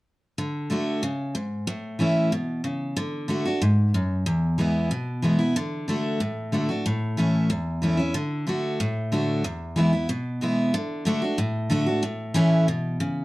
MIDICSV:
0, 0, Header, 1, 2, 480
1, 0, Start_track
1, 0, Tempo, 323625
1, 567, Time_signature, 4, 2, 24, 8
1, 19651, End_track
2, 0, Start_track
2, 0, Title_t, "Steel-string acoustic guitar"
2, 0, Program_c, 0, 25
2, 565, Note_on_c, 0, 50, 80
2, 1017, Note_off_c, 0, 50, 0
2, 1035, Note_on_c, 0, 50, 65
2, 1048, Note_on_c, 0, 57, 58
2, 1062, Note_on_c, 0, 62, 60
2, 1071, Note_on_c, 0, 66, 75
2, 1496, Note_off_c, 0, 50, 0
2, 1502, Note_off_c, 0, 57, 0
2, 1509, Note_off_c, 0, 62, 0
2, 1514, Note_off_c, 0, 66, 0
2, 1524, Note_on_c, 0, 49, 85
2, 1980, Note_off_c, 0, 49, 0
2, 1999, Note_on_c, 0, 44, 83
2, 2458, Note_off_c, 0, 44, 0
2, 2480, Note_on_c, 0, 45, 89
2, 2949, Note_on_c, 0, 52, 56
2, 2965, Note_on_c, 0, 57, 66
2, 2977, Note_on_c, 0, 61, 64
2, 2990, Note_on_c, 0, 64, 66
2, 3394, Note_off_c, 0, 45, 0
2, 3413, Note_off_c, 0, 52, 0
2, 3420, Note_off_c, 0, 57, 0
2, 3426, Note_off_c, 0, 61, 0
2, 3433, Note_off_c, 0, 64, 0
2, 3444, Note_on_c, 0, 47, 81
2, 3900, Note_off_c, 0, 47, 0
2, 3915, Note_on_c, 0, 49, 80
2, 4375, Note_off_c, 0, 49, 0
2, 4399, Note_on_c, 0, 50, 88
2, 4848, Note_off_c, 0, 50, 0
2, 4866, Note_on_c, 0, 50, 64
2, 4879, Note_on_c, 0, 57, 61
2, 4893, Note_on_c, 0, 62, 66
2, 4898, Note_on_c, 0, 66, 66
2, 5105, Note_off_c, 0, 66, 0
2, 5107, Note_off_c, 0, 50, 0
2, 5113, Note_off_c, 0, 57, 0
2, 5120, Note_off_c, 0, 62, 0
2, 5123, Note_on_c, 0, 66, 60
2, 5153, Note_on_c, 0, 62, 41
2, 5353, Note_off_c, 0, 66, 0
2, 5363, Note_on_c, 0, 44, 87
2, 5368, Note_off_c, 0, 62, 0
2, 5819, Note_off_c, 0, 44, 0
2, 5848, Note_on_c, 0, 42, 84
2, 6302, Note_off_c, 0, 42, 0
2, 6321, Note_on_c, 0, 40, 88
2, 6791, Note_on_c, 0, 52, 63
2, 6804, Note_on_c, 0, 56, 63
2, 6819, Note_on_c, 0, 59, 65
2, 6829, Note_on_c, 0, 64, 62
2, 7234, Note_off_c, 0, 40, 0
2, 7253, Note_off_c, 0, 52, 0
2, 7260, Note_off_c, 0, 56, 0
2, 7267, Note_off_c, 0, 59, 0
2, 7272, Note_off_c, 0, 64, 0
2, 7281, Note_on_c, 0, 47, 82
2, 7749, Note_on_c, 0, 52, 64
2, 7765, Note_on_c, 0, 56, 63
2, 7778, Note_on_c, 0, 59, 64
2, 7787, Note_on_c, 0, 64, 58
2, 7971, Note_off_c, 0, 64, 0
2, 7988, Note_off_c, 0, 52, 0
2, 7989, Note_on_c, 0, 64, 55
2, 7996, Note_off_c, 0, 56, 0
2, 8003, Note_off_c, 0, 59, 0
2, 8024, Note_on_c, 0, 59, 43
2, 8194, Note_off_c, 0, 47, 0
2, 8226, Note_off_c, 0, 64, 0
2, 8243, Note_off_c, 0, 59, 0
2, 8248, Note_on_c, 0, 50, 95
2, 8701, Note_off_c, 0, 50, 0
2, 8719, Note_on_c, 0, 50, 58
2, 8736, Note_on_c, 0, 57, 67
2, 8741, Note_on_c, 0, 62, 65
2, 8755, Note_on_c, 0, 66, 66
2, 9177, Note_off_c, 0, 50, 0
2, 9186, Note_off_c, 0, 57, 0
2, 9188, Note_off_c, 0, 62, 0
2, 9196, Note_off_c, 0, 66, 0
2, 9201, Note_on_c, 0, 45, 81
2, 9674, Note_on_c, 0, 50, 59
2, 9685, Note_on_c, 0, 57, 62
2, 9700, Note_on_c, 0, 62, 64
2, 9705, Note_on_c, 0, 66, 64
2, 9902, Note_off_c, 0, 66, 0
2, 9911, Note_off_c, 0, 50, 0
2, 9916, Note_off_c, 0, 57, 0
2, 9919, Note_on_c, 0, 66, 50
2, 9924, Note_off_c, 0, 62, 0
2, 9953, Note_on_c, 0, 62, 47
2, 10115, Note_off_c, 0, 45, 0
2, 10151, Note_off_c, 0, 66, 0
2, 10168, Note_off_c, 0, 62, 0
2, 10170, Note_on_c, 0, 45, 93
2, 10638, Note_on_c, 0, 52, 63
2, 10653, Note_on_c, 0, 57, 71
2, 10663, Note_on_c, 0, 61, 69
2, 10676, Note_on_c, 0, 64, 66
2, 11079, Note_off_c, 0, 45, 0
2, 11097, Note_off_c, 0, 52, 0
2, 11105, Note_off_c, 0, 57, 0
2, 11110, Note_off_c, 0, 61, 0
2, 11116, Note_off_c, 0, 64, 0
2, 11120, Note_on_c, 0, 40, 92
2, 11595, Note_on_c, 0, 52, 58
2, 11611, Note_on_c, 0, 57, 64
2, 11617, Note_on_c, 0, 61, 60
2, 11626, Note_on_c, 0, 64, 69
2, 11807, Note_off_c, 0, 64, 0
2, 11824, Note_on_c, 0, 64, 54
2, 11832, Note_off_c, 0, 52, 0
2, 11840, Note_off_c, 0, 57, 0
2, 11840, Note_off_c, 0, 61, 0
2, 11858, Note_on_c, 0, 61, 48
2, 12035, Note_off_c, 0, 40, 0
2, 12064, Note_off_c, 0, 64, 0
2, 12077, Note_on_c, 0, 50, 97
2, 12081, Note_off_c, 0, 61, 0
2, 12540, Note_off_c, 0, 50, 0
2, 12558, Note_on_c, 0, 50, 60
2, 12567, Note_on_c, 0, 57, 58
2, 12581, Note_on_c, 0, 62, 66
2, 12591, Note_on_c, 0, 66, 66
2, 13018, Note_off_c, 0, 50, 0
2, 13022, Note_off_c, 0, 57, 0
2, 13029, Note_off_c, 0, 62, 0
2, 13034, Note_off_c, 0, 66, 0
2, 13053, Note_on_c, 0, 45, 91
2, 13524, Note_on_c, 0, 50, 58
2, 13532, Note_on_c, 0, 57, 65
2, 13545, Note_on_c, 0, 62, 58
2, 13552, Note_on_c, 0, 66, 64
2, 13962, Note_off_c, 0, 45, 0
2, 13981, Note_off_c, 0, 50, 0
2, 13985, Note_off_c, 0, 57, 0
2, 13992, Note_off_c, 0, 62, 0
2, 13995, Note_off_c, 0, 66, 0
2, 14007, Note_on_c, 0, 40, 96
2, 14474, Note_on_c, 0, 52, 65
2, 14491, Note_on_c, 0, 56, 68
2, 14499, Note_on_c, 0, 59, 64
2, 14509, Note_on_c, 0, 64, 67
2, 14704, Note_off_c, 0, 64, 0
2, 14713, Note_off_c, 0, 52, 0
2, 14721, Note_off_c, 0, 56, 0
2, 14722, Note_on_c, 0, 64, 56
2, 14725, Note_off_c, 0, 59, 0
2, 14753, Note_on_c, 0, 59, 44
2, 14919, Note_off_c, 0, 40, 0
2, 14954, Note_off_c, 0, 64, 0
2, 14965, Note_on_c, 0, 47, 86
2, 14969, Note_off_c, 0, 59, 0
2, 15443, Note_on_c, 0, 52, 51
2, 15457, Note_on_c, 0, 56, 65
2, 15468, Note_on_c, 0, 59, 61
2, 15476, Note_on_c, 0, 64, 66
2, 15879, Note_off_c, 0, 47, 0
2, 15901, Note_off_c, 0, 52, 0
2, 15908, Note_off_c, 0, 56, 0
2, 15914, Note_off_c, 0, 59, 0
2, 15918, Note_off_c, 0, 64, 0
2, 15929, Note_on_c, 0, 50, 92
2, 16375, Note_off_c, 0, 50, 0
2, 16393, Note_on_c, 0, 50, 79
2, 16410, Note_on_c, 0, 57, 88
2, 16416, Note_on_c, 0, 62, 91
2, 16427, Note_on_c, 0, 66, 101
2, 16619, Note_off_c, 0, 66, 0
2, 16633, Note_off_c, 0, 50, 0
2, 16636, Note_on_c, 0, 66, 55
2, 16641, Note_off_c, 0, 57, 0
2, 16644, Note_off_c, 0, 62, 0
2, 16672, Note_on_c, 0, 62, 48
2, 16872, Note_off_c, 0, 66, 0
2, 16879, Note_on_c, 0, 45, 93
2, 16889, Note_off_c, 0, 62, 0
2, 17349, Note_on_c, 0, 50, 76
2, 17365, Note_on_c, 0, 57, 82
2, 17374, Note_on_c, 0, 62, 84
2, 17384, Note_on_c, 0, 66, 94
2, 17578, Note_off_c, 0, 66, 0
2, 17591, Note_off_c, 0, 50, 0
2, 17595, Note_on_c, 0, 66, 60
2, 17599, Note_off_c, 0, 57, 0
2, 17603, Note_off_c, 0, 62, 0
2, 17631, Note_on_c, 0, 62, 41
2, 17796, Note_off_c, 0, 45, 0
2, 17831, Note_off_c, 0, 66, 0
2, 17837, Note_on_c, 0, 45, 87
2, 17849, Note_off_c, 0, 62, 0
2, 18307, Note_on_c, 0, 52, 94
2, 18323, Note_on_c, 0, 57, 97
2, 18333, Note_on_c, 0, 61, 93
2, 18341, Note_on_c, 0, 64, 90
2, 18755, Note_off_c, 0, 45, 0
2, 18774, Note_off_c, 0, 52, 0
2, 18782, Note_off_c, 0, 57, 0
2, 18787, Note_off_c, 0, 61, 0
2, 18791, Note_off_c, 0, 64, 0
2, 18807, Note_on_c, 0, 47, 87
2, 19264, Note_off_c, 0, 47, 0
2, 19285, Note_on_c, 0, 49, 80
2, 19651, Note_off_c, 0, 49, 0
2, 19651, End_track
0, 0, End_of_file